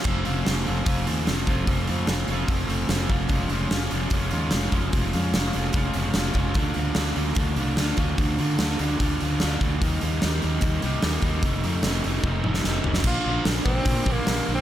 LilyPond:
<<
  \new Staff \with { instrumentName = "Tenor saxophone" } { \time 4/4 \key f \mixolydian \tempo 4 = 148 r1 | r1 | r1 | r1 |
r1 | r1 | r1 | r1 |
\key bes \lydian f'4 r8 c'4~ c'16 bes4 c'16 | }
  \new Staff \with { instrumentName = "Overdriven electric guitar" } { \time 4/4 \key f \mixolydian <f a c' f'>8 <f a c' f'>8 <f a c' f'>8 <f a c' f'>8 <f a c' f'>8 <f a c' f'>8 <f a c' f'>8 <f a c' f'>8 | <f a c' f'>8 <f a c' f'>8 <f a c' f'>8 <f a c' f'>8 <f a c' f'>8 <f a c' f'>8 <f a c' f'>8 <f a c' f'>8 | <f aes des' f'>8 <f aes des' f'>8 <f aes des' f'>8 <f aes des' f'>8 <f aes des' f'>8 <f aes des' f'>8 <f aes des' f'>8 <f aes des' f'>8 | <f aes des' f'>8 <f aes des' f'>8 <f aes des' f'>8 <f aes des' f'>8 <f aes des' f'>8 <f aes des' f'>8 <f aes des' f'>8 <f aes des' f'>8 |
<d a d' f'>8 <d a d' f'>8 <d a d' f'>8 <d a d' f'>8 <d a d' f'>8 <d a d' f'>8 <d a d' f'>8 <d a d' f'>8 | <d a d' f'>8 <d a d' f'>8 <d a d' f'>8 <d a d' f'>8 <d a d' f'>8 <d a d' f'>8 <d a d' f'>8 <d a d' f'>8 | <ees g bes ees'>8 <ees g bes ees'>8 <ees g bes ees'>8 <ees g bes ees'>8 <ees g bes ees'>8 <ees g bes ees'>8 <ees g bes ees'>8 <ees g bes ees'>8 | <f, c ees a ees'>8 <f, c ees a ees'>8 <f, c ees a ees'>8 <f, c ees a ees'>8 <f, c ees a ees'>8 <f, c ees a ees'>8 <f, c ees a ees'>8 <f, c ees a ees'>8 |
\key bes \lydian <bes, d f bes d'>8 <bes, d f bes d'>8 <bes, d f bes d'>8 <bes, d f bes d'>8 <bes, d f bes d'>8 <bes, d f bes d'>8 <bes, d f bes d'>8 <bes, d f bes d'>8 | }
  \new Staff \with { instrumentName = "Fingered electric bass" } { \clef bass \time 4/4 \key f \mixolydian f,,8 f,,8 f,,8 f,,8 f,,8 ees,8 f,,8 f,,8 | f,,8 f,8 f,,8 f,,8 f,,8 f,,8 f,,8 f,,8 | f,,8 f,,8 f,,8 f,,8 f,,8 ees,8 f,,8 f,,8 | f,,8 f,8 f,,8 f,,8 f,,8 f,,8 f,,8 f,,8 |
d,8 d,8 d,8 d,8 d,8 c,8 d,8 d,8 | d,8 d8 d,8 d,8 d,8 d,8 d,8 d,8 | ees,8 ees,8 ees,8 ees,8 ees,8 c,8 ees,8 ees,8 | f,,8 f,8 f,,8 f,,8 f,,8 f,,8 f,,8 f,,8 |
\key bes \lydian bes,,8 bes,,8 bes,,8 bes,,8 bes,8 bes,,8 bes,,8 bes,,8 | }
  \new DrumStaff \with { instrumentName = "Drums" } \drummode { \time 4/4 <cymc bd>8 hho8 <hho sn>8 hho8 <hho bd>8 hho8 <hho sn>8 <hho bd>8 | <hho bd>8 hho8 <hho sn>8 hho8 <hho bd>8 hho8 <hho sn>8 <hho bd>8 | <hho bd>8 hho8 <hho sn>8 hho8 <hho bd>8 hho8 <hho sn>8 <hho bd>8 | <hho bd>8 hho8 <hho sn>8 hho8 <hho bd>8 hho8 <hho sn>8 <hho bd>8 |
<hho bd>8 hho8 <hho sn>8 hho8 <hho bd>8 hho8 <hho sn>8 <hho bd>8 | <hho bd>8 hho8 <hho sn>8 hho8 <hho bd>8 hho8 <hho sn>8 <hho bd>8 | <hho bd>8 hho8 <hho sn>8 hho8 <hho bd>8 hho8 <hho sn>8 <hho bd>8 | <hho bd>8 hho8 <hho sn>8 hho8 bd8 toml16 sn16 sn8 tomfh16 sn16 |
<cymc bd>4 <hho sn>8 bd8 <hho bd>8 bd8 <hho sn>4 | }
>>